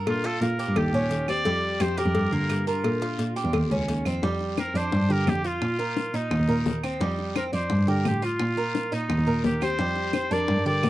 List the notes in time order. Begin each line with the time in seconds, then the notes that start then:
Already playing: A#4
0.06 A#2 D4 F4, cowbell, long guiro, claves
0.24 F4 A4, cowbell
0.41 A#2 F4 A#4, cowbell, short guiro
0.59 G4, short guiro
0.67 G2
0.76 D#2 D#4 G4, cowbell, long guiro, claves
0.93 A#2 C#4
1.10 D#2, cowbell, short guiro
1.28 C4 G4 D5, short guiro, claves
1.45 F2 G3, cowbell, long guiro
1.80 F2 C4 G4 C5, cowbell, short guiro, claves
1.98 G4 A#4, cowbell, short guiro
2.06 F2
2.14 G2, cowbell, long guiro
2.32 D3 A#3
2.49 G2, cowbell, short guiro, claves
2.67 D4 F4 A#4, short guiro
2.84 A#2, cowbell, long guiro, claves
3.02 F4, cowbell
3.18 A#2, cowbell, short guiro
3.36 G4, short guiro
3.44 E2
3.53 D#2, cowbell, long guiro, claves
3.71 C#2 C#4
3.88 D#2, cowbell, short guiro
4.05 F2 C4, short guiro, claves
4.23 F2 G3, high bongo, long guiro
4.41 high bongo
4.58 C4 A#4, high bongo, short guiro, claves
4.74 F2 D4 C5, high bongo, short guiro
4.92 G2, high bongo, long guiro
5.00 G2
5.09 D3 G4 A#4
5.26 F2 G4, high bongo, low bongo, short guiro, claves
5.44 F4, high bongo, short guiro
5.61 A#2, high bongo, long guiro, claves
5.79 A#4, high bongo
5.97 high bongo, short guiro
6.13 A#2 D#4, high bongo, short guiro
6.31 D#2, high bongo, long guiro, claves
6.40 D#2
6.48 A#2 A#4
6.66 D#2, high bongo, low bongo, short guiro
6.83 C4, high bongo, short guiro, claves
7.00 F2 G3, high bongo, long guiro
7.19 high bongo
7.36 C4 A#4, high bongo, short guiro, claves
7.53 F2 D4 C5, high bongo, short guiro
7.70 G2, high bongo, long guiro
7.79 G2
7.87 D3 G4 A#4
8.05 A2 G4, high bongo, low bongo, short guiro, claves
8.22 F4, high bongo, short guiro
8.39 A#2, high bongo, long guiro, claves
8.57 A#4, high bongo
8.75 high bongo, short guiro
8.92 A#2 D#4, high bongo, short guiro
9.09 D#2, high bongo, long guiro, claves
9.18 D#2
9.27 A#2 A#4
9.44 D#2 D#4 G4, high bongo, low bongo, short guiro
9.61 C4 G4 C5, high bongo, short guiro, claves
9.79 F2 G3, high bongo, long guiro
9.96 high bongo
10.13 C4, high bongo, short guiro, claves
10.31 F2 D4 A#4 D5, high bongo, short guiro
10.48 G2, high bongo, long guiro
10.57 G2
10.65 D3 G4 A#4 D5
10.83 A2, high bongo, low bongo, short guiro, claves